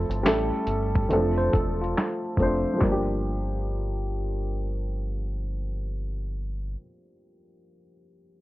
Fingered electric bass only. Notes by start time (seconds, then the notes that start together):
0.09 G1
0.24 A1
0.52 muted fingered electric bass stroke
0.67 G1
1.10 F1
1.53 E1
2.37 F1
2.81 G1